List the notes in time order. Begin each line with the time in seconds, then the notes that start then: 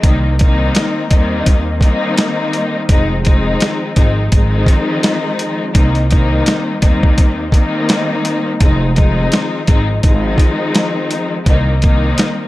0.03 C2 D#3 G3 A#3 C4 D#4, kick, closed hi-hat
0.39 D#3 G3 A#3 C4 D#4, kick, closed hi-hat
0.75 snare, closed hi-hat
1.10 D#2 D#3 G3 A#3 C4 D#4, kick, closed hi-hat
1.46 D#2, kick, closed hi-hat
1.81 D#3 G3 A#3 C4 D#4, kick, closed hi-hat
2.17 snare, closed hi-hat
2.53 closed hi-hat
2.89 F1 D#3 F3 G#3 C4 D#4, kick, closed hi-hat
3.24 D#3 F3 G#3 C4 D#4, kick, closed hi-hat
3.60 snare, closed hi-hat
3.96 G#1 D#3 F3 G#3 C4 D#4, kick, closed hi-hat
4.32 G#1 D#3 F3 G#3 C4 D#4, kick, closed hi-hat
4.66 kick, closed hi-hat
5.03 snare, closed hi-hat
5.39 closed hi-hat
5.74 C2 D#3 G3 A#3 C4 D#4, kick, closed hi-hat
5.95 closed hi-hat
6.11 D#3 G3 A#3 C4 D#4, kick, closed hi-hat
6.46 snare, closed hi-hat
6.82 D#2 D#3 G3 A#3 C4 D#4, kick, closed hi-hat
7.03 kick
7.18 D#2, kick, closed hi-hat
7.52 D#3 G3 A#3 C4 D#4, kick, closed hi-hat
7.89 snare, closed hi-hat
8.25 closed hi-hat
8.61 F1 D#3 F3 G#3 C4 D#4, kick, closed hi-hat
8.96 D#3 F3 G#3 C4 D#4, kick, closed hi-hat
9.32 snare, closed hi-hat
9.67 G#1 D#3 F3 G#3 C4 D#4, kick, closed hi-hat
10.03 G#1 D#3 F3 G#3 C4 D#4, kick, closed hi-hat
10.38 kick, closed hi-hat
10.75 snare, closed hi-hat
11.11 closed hi-hat
11.45 C2 D#3 G3 A#3 C4 D#4, kick, closed hi-hat
11.82 D#3 G3 A#3 C4 D#4, kick, closed hi-hat
12.18 snare, closed hi-hat